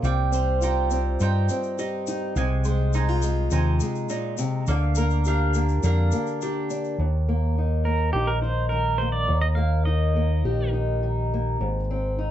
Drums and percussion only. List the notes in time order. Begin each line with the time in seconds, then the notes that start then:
0.04 shaker
0.33 shaker
0.62 shaker
0.91 shaker
1.20 shaker
1.49 shaker
1.63 shaker
1.79 shaker
2.07 shaker
2.36 shaker
2.64 shaker
2.93 shaker
3.22 shaker
3.51 shaker
3.80 shaker
3.95 shaker
4.09 shaker
4.38 shaker
4.67 shaker
4.95 shaker
5.10 shaker
5.25 shaker
5.54 shaker
5.69 shaker
5.83 shaker
6.12 shaker
6.27 shaker
6.41 shaker
6.70 shaker
6.84 shaker